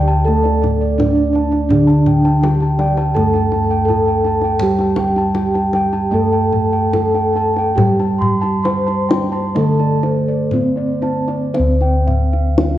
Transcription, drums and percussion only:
0.28 kendang slap soft
0.45 kendang slap soft
0.64 kendang slap soft
0.64 kendang low medium
1.00 kendang high medium
1.00 kendang low medium
1.18 kendang slap soft
1.35 kendang slap soft
1.52 kendang slap soft
1.70 kendang low medium
1.90 kendang slap soft
2.06 kendang low medium
2.25 kendang slap soft
2.44 kendang high medium
2.60 kendang slap soft
2.79 kendang high medium
2.98 kendang slap soft
3.17 kendang slap soft
3.17 kendang high medium
3.34 kendang slap soft
3.52 kendang slap soft
3.52 kendang low medium
3.88 kendang low soft
4.25 kendang slap soft
4.42 kendang slap soft
4.59 kendang low medium
4.79 kendang slap soft
4.96 kendang high medium
4.96 kendang low medium
5.16 kendang slap soft
5.35 kendang high medium
5.55 kendang slap soft
5.73 kendang high medium
5.93 kendang slap soft
6.12 kendang slap soft
6.53 kendang low medium
6.94 kendang high medium
6.94 kendang low medium
7.15 kendang slap soft
7.35 kendang slap soft
7.56 kendang slap soft
7.78 kendang low medium
7.99 kendang slap soft
8.22 kendang low medium
8.43 kendang slap soft
8.65 kendang high medium
8.88 kendang slap soft
9.10 kendang high medium
9.32 kendang slap soft
9.56 kendang slap soft
9.56 kendang high medium
9.80 kendang slap soft
10.03 kendang slap soft
10.51 kendang low medium
10.76 kendang slap soft
11.02 kendang slap soft
11.28 kendang slap soft
11.55 kendang high medium
11.81 kendang slap soft
12.08 kendang low medium
12.33 kendang slap soft
12.58 kendang slap soft
12.58 kendang high medium

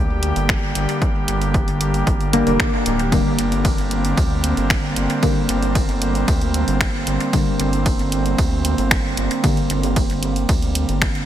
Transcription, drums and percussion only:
0.23 closed hi-hat medium
0.36 closed hi-hat soft
0.49 finger snap medium
0.49 kick loud
0.49 closed hi-hat soft
0.75 closed hi-hat medium
0.89 closed hi-hat soft
1.02 kick loud
1.02 closed hi-hat soft
1.28 closed hi-hat medium
1.42 closed hi-hat soft
1.54 kick loud
1.54 closed hi-hat soft
1.68 closed hi-hat soft
1.81 closed hi-hat medium
1.94 closed hi-hat soft
2.07 kick loud
2.07 closed hi-hat soft
2.21 closed hi-hat soft
2.33 closed hi-hat medium
2.47 closed hi-hat soft
2.60 finger snap medium
2.60 kick loud
2.60 closed hi-hat soft
2.86 closed hi-hat medium
2.99 closed hi-hat soft
3.12 kick loud
3.12 closed hi-hat soft
3.12 ride medium
3.39 closed hi-hat medium
3.52 closed hi-hat soft
3.65 kick loud
3.65 closed hi-hat soft
3.65 ride medium
3.78 closed hi-hat soft
3.91 closed hi-hat medium
4.05 closed hi-hat soft
4.17 kick loud
4.17 closed hi-hat soft
4.17 ride medium
4.44 closed hi-hat medium
4.57 closed hi-hat soft
4.70 finger snap medium
4.70 kick loud
4.70 closed hi-hat soft
4.70 ride medium
4.96 closed hi-hat medium
5.10 closed hi-hat soft
5.23 kick loud
5.23 closed hi-hat soft
5.23 ride medium
5.49 closed hi-hat medium
5.62 closed hi-hat soft
5.75 kick loud
5.75 closed hi-hat soft
5.75 ride medium
5.89 closed hi-hat soft
6.02 closed hi-hat medium
6.15 closed hi-hat soft
6.28 kick loud
6.28 closed hi-hat soft
6.28 ride medium
6.41 closed hi-hat soft
6.54 closed hi-hat medium
6.68 closed hi-hat soft
6.81 finger snap medium
6.81 kick loud
6.81 closed hi-hat soft
6.81 ride medium
7.07 closed hi-hat medium
7.20 closed hi-hat soft
7.33 kick loud
7.33 closed hi-hat soft
7.33 ride medium
7.60 closed hi-hat medium
7.73 closed hi-hat soft
7.86 kick loud
7.86 closed hi-hat soft
7.86 ride medium
7.99 closed hi-hat soft
8.12 closed hi-hat medium
8.26 closed hi-hat soft
8.38 kick loud
8.38 closed hi-hat soft
8.38 ride medium
8.65 closed hi-hat medium
8.78 closed hi-hat soft
8.91 finger snap medium
8.91 kick loud
8.91 closed hi-hat soft
8.91 ride medium
9.17 closed hi-hat medium
9.31 closed hi-hat soft
9.44 kick loud
9.44 closed hi-hat medium
9.44 ride medium
9.57 closed hi-hat soft
9.70 closed hi-hat medium
9.83 closed hi-hat soft
9.96 kick loud
9.96 closed hi-hat medium
9.96 ride medium
10.10 closed hi-hat soft
10.23 closed hi-hat medium
10.36 closed hi-hat soft
10.49 kick loud
10.49 closed hi-hat medium
10.49 ride medium
10.62 closed hi-hat soft
10.75 closed hi-hat medium
10.89 closed hi-hat soft
11.02 finger snap medium
11.02 kick loud
11.02 closed hi-hat soft
11.02 ride medium
11.15 closed hi-hat soft

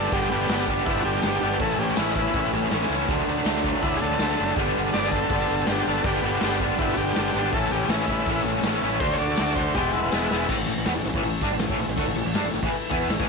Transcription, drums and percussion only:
0.02 tambourine soft
0.12 kick loud
0.12 crash medium
0.20 tambourine soft
0.30 tambourine soft
0.48 snare loud
0.48 tambourine medium
0.48 crash medium
0.58 snare soft
0.58 tambourine medium
0.66 kick medium
0.66 tambourine medium
0.86 kick loud
0.86 crash medium
0.94 tambourine soft
1.13 tambourine soft
1.22 snare loud
1.22 tambourine medium
1.22 crash medium
1.41 tambourine medium
1.51 tambourine soft
1.60 kick loud
1.60 crash medium
1.70 tambourine soft
1.77 tambourine soft
1.96 snare loud
1.96 tambourine loud
1.96 crash medium
2.05 tambourine medium
2.14 kick medium
2.14 tambourine medium
2.34 kick loud
2.34 crash medium
2.43 tambourine soft
2.51 tambourine medium
2.62 snare soft
2.62 tambourine soft
2.70 snare loud
2.70 tambourine medium
2.70 crash medium
2.79 tambourine soft
2.88 tambourine medium
3.08 kick loud
3.08 tambourine soft
3.08 crash medium
3.18 tambourine soft
3.27 tambourine soft
3.44 snare loud
3.44 tambourine medium
3.44 crash medium
3.53 snare soft
3.53 tambourine medium
3.61 kick medium
3.61 tambourine medium
3.71 tambourine soft
3.82 kick loud
3.82 tambourine soft
3.82 crash medium
3.91 tambourine soft
3.99 tambourine medium
4.10 snare soft
4.10 tambourine soft
4.19 snare loud
4.19 tambourine loud
4.19 crash medium
4.29 tambourine soft
4.38 tambourine medium
4.48 tambourine soft
4.56 kick loud
4.56 crash medium
4.66 tambourine soft
4.75 tambourine soft
4.93 snare loud
4.93 tambourine loud
4.93 crash medium
5.02 snare soft
5.02 tambourine medium
5.12 kick medium
5.12 tambourine medium
5.29 kick loud
5.29 crash medium
5.39 tambourine soft
5.48 tambourine medium
5.58 tambourine soft
5.67 snare loud
5.67 tambourine loud
5.67 crash medium
5.76 tambourine soft
5.86 tambourine medium
5.95 tambourine soft
6.04 kick loud
6.04 crash medium
6.13 tambourine soft
6.24 tambourine soft
6.41 snare loud
6.41 tambourine loud
6.41 crash medium
6.50 snare soft
6.50 tambourine medium
6.60 kick medium
6.60 tambourine medium
6.79 kick loud
6.79 crash medium
6.88 tambourine soft
6.97 tambourine medium
7.06 snare soft
7.06 tambourine soft
7.15 snare loud
7.15 tambourine loud
7.15 crash medium
7.34 tambourine medium
7.53 kick loud
7.53 crash medium
7.62 tambourine soft
7.70 tambourine soft
7.89 snare loud
7.89 tambourine loud
7.89 crash medium
7.98 snare soft
7.98 tambourine medium
8.07 kick medium
8.07 tambourine medium
8.26 kick loud
8.26 crash medium
8.35 tambourine soft
8.44 tambourine medium
8.54 snare soft
8.62 snare loud
8.62 tambourine loud
8.62 crash medium
8.81 tambourine medium
8.91 tambourine soft
9.00 kick loud
9.00 tambourine soft
9.00 crash medium
9.08 tambourine soft
9.17 tambourine soft
9.28 tambourine soft
9.36 snare loud
9.36 tambourine loud
9.36 crash medium
9.45 snare soft
9.45 tambourine medium
9.56 kick medium
9.56 tambourine medium
9.65 tambourine soft
9.75 kick loud
9.75 snare medium
9.75 tambourine soft
9.84 tambourine soft
9.94 tambourine medium
10.11 snare loud
10.11 tambourine loud
10.21 tambourine soft
10.30 snare loud
10.30 tambourine medium
10.49 kick loud
10.49 crash loud
10.49 tambourine soft
10.49 crash medium
10.58 tambourine soft
10.67 tambourine medium
10.67 crash medium
10.86 snare loud
10.86 tambourine medium
10.86 crash medium
10.96 tambourine soft
11.04 tambourine medium
11.04 crash medium
11.14 kick loud
11.23 tambourine soft
11.23 crash medium
11.41 kick loud
11.41 tambourine medium
11.41 crash medium
11.59 snare loud
11.59 tambourine medium
11.59 crash medium
11.70 kick loud
11.79 tambourine soft
11.79 crash medium
11.88 tambourine medium
11.97 kick loud
11.97 tambourine soft
11.97 crash loud
12.07 tambourine soft
12.16 tambourine medium
12.16 crash medium
12.34 snare loud
12.34 tambourine medium
12.34 crash medium
12.53 tambourine medium
12.53 crash medium
12.63 kick loud
12.72 tambourine soft
12.72 crash medium
12.91 kick loud
12.91 tambourine medium
12.91 crash medium
13.10 snare loud
13.10 tambourine medium
13.10 crash medium
13.20 kick loud

